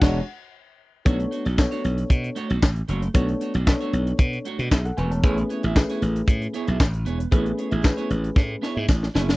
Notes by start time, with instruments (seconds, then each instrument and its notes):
Already playing: analog synth lead F#5
0.01 slap bass E1, tine electric piano G#3 D4 F#4 C#5, clean electric guitar D4 F#4 G#4 C#5, kick, snare, crash
1.05 slap bass B1, clean electric guitar A3 D4 F#4 C#5, tine electric piano B3 D4 A4 C#5, kick, closed hi-hat
1.20 muted clean electric guitar stroke, closed hi-hat
1.31 clean electric guitar A3 D4 F#4 C#5, closed hi-hat
1.45 slap bass B1, clean electric guitar A3 D4 F#4 D5, closed hi-hat
1.58 tine electric piano B3 D4 A4 C#5, muted clean electric guitar stroke, kick, snare, clap, tambourine
1.71 clean electric guitar A3 D4 F#4 C#5, closed hi-hat
1.83 slap bass B1, muted clean electric guitar stroke, closed hi-hat
1.98 muted clean electric guitar stroke, closed hi-hat
2.10 slap bass B2, muted clean electric guitar stroke, kick, closed hi-hat
2.23 muted clean electric guitar stroke, closed hi-hat
2.35 clean electric guitar A3 D4 F#4 C#5, closed hi-hat
2.50 slap bass B1, clean electric guitar A3 D4 F#4 D5, closed hi-hat
2.62 slap bass A1, muted clean electric guitar stroke, kick, snare, clap, tambourine
2.76 muted clean electric guitar stroke, closed hi-hat
2.88 slap bass F#1, clean electric guitar A3 D4 F#4 C#5, closed hi-hat
3.02 muted clean electric guitar stroke, closed hi-hat
3.14 slap bass B1, clean electric guitar A3 D4 F#4 C#5, tine electric piano B3 D4 A4 C#5, kick, closed hi-hat
3.29 muted clean electric guitar stroke, closed hi-hat
3.41 clean electric guitar A3 D4 F#4 C#5, closed hi-hat
3.54 slap bass B1, clean electric guitar A3 D4 F#4 D5, closed hi-hat
3.67 tine electric piano B3 C#4 A4 C#5, muted clean electric guitar stroke, kick, snare, clap, tambourine
3.73 tine electric piano D4
3.81 clean electric guitar A3 D4 F#4 C#5, closed hi-hat
3.93 slap bass B1, muted clean electric guitar stroke, closed hi-hat
4.07 muted clean electric guitar stroke, closed hi-hat
4.19 slap bass B2, muted clean electric guitar stroke, kick, closed hi-hat
4.33 muted clean electric guitar stroke, closed hi-hat
4.45 clean electric guitar A3 D4 F#4 C#5, closed hi-hat
4.59 slap bass B2, clean electric guitar A3 D4 F#4 D5, closed hi-hat
4.71 slap bass B1, tine electric piano G#4 E5, muted clean electric guitar stroke, kick, snare, clap, tambourine
4.85 tine electric piano A4 F#5, muted clean electric guitar stroke, closed hi-hat
4.97 slap bass E1, clean electric guitar A3 D4 F#4 C#5, tine electric piano B4 G#5, closed hi-hat
5.11 tine electric piano C#5 A5, muted clean electric guitar stroke, closed hi-hat
5.23 slap bass A1, tine electric piano A3 C#4 G#4 B4, clean electric guitar B3 E4 G#4 C#5, kick, closed hi-hat
5.38 muted clean electric guitar stroke, closed hi-hat
5.49 clean electric guitar B3 E4 G#4 C#5, closed hi-hat
5.63 slap bass A1, clean electric guitar B3 E4 G#4 E5, closed hi-hat
5.76 tine electric piano A3 C#4 G#4 B4, muted clean electric guitar stroke, kick, snare, clap, tambourine
5.89 clean electric guitar B3 E4 G#4 C#5, closed hi-hat
6.02 slap bass A1, muted clean electric guitar stroke, closed hi-hat
6.16 muted clean electric guitar stroke, closed hi-hat
6.28 slap bass A2, muted clean electric guitar stroke, kick, closed hi-hat
6.42 muted clean electric guitar stroke, closed hi-hat
6.54 clean electric guitar B3 E4 G#4 C#5, closed hi-hat
6.67 slap bass B1, clean electric guitar B3 E4 G#4 E5, closed hi-hat
6.80 slap bass A1, muted clean electric guitar stroke, kick, snare, clap, tambourine
6.94 muted clean electric guitar stroke, closed hi-hat
7.05 slap bass E1, clean electric guitar B3 E4 G#4 C#5, closed hi-hat
7.20 muted clean electric guitar stroke, closed hi-hat
7.31 slap bass A1, tine electric piano A3 C4 G#4 B4, clean electric guitar B3 E4 G#4 C#5, kick, closed hi-hat
7.38 tine electric piano C#4
7.46 muted clean electric guitar stroke, closed hi-hat
7.58 clean electric guitar B3 E4 G#4 C#5, closed hi-hat
7.71 slap bass A1, clean electric guitar B3 E4 G#4 E5, closed hi-hat
7.84 tine electric piano A3 C#4 G#4 B4, muted clean electric guitar stroke, kick, snare, clap, tambourine
7.97 clean electric guitar B3 E4 G#4 C#5, closed hi-hat
8.10 slap bass A1, muted clean electric guitar stroke, closed hi-hat
8.23 muted clean electric guitar stroke, closed hi-hat
8.36 slap bass A2, muted clean electric guitar stroke, kick, snare
8.49 muted clean electric guitar stroke
8.62 clean electric guitar B3 E4 G#4 C#5, snare
8.75 slap bass G#2, clean electric guitar B3 E4 G#4 E5
8.88 slap bass A1, kick, snare, tambourine
9.02 muted clean electric guitar stroke, snare
9.14 slap bass F#1, clean electric guitar B3 E4 G#4 C#5, snare
9.28 muted clean electric guitar stroke, snare